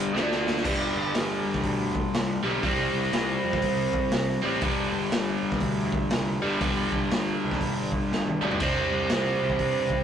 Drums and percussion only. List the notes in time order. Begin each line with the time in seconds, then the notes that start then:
0.16 snare
0.32 snare
0.47 snare
0.57 snare
0.65 kick, crash
1.14 snare, open hi-hat
1.54 kick, snare
1.64 kick, open hi-hat
1.95 kick
2.14 snare, open hi-hat
2.63 kick, open hi-hat
3.13 snare, open hi-hat
3.53 kick, snare
3.62 kick, open hi-hat
3.93 kick
4.11 snare, open hi-hat
4.61 kick, open hi-hat
5.12 snare, open hi-hat
5.52 kick, snare
5.60 kick, open hi-hat
5.92 kick
6.10 snare, open hi-hat
6.61 kick, open hi-hat
6.92 kick
7.11 snare, open hi-hat
7.51 kick, snare
7.61 kick, open hi-hat
7.92 kick
8.12 snare
8.27 high tom
8.42 mid tom
8.51 floor tom
8.60 kick, crash
9.09 snare, open hi-hat
9.50 kick
9.59 kick, open hi-hat
9.90 kick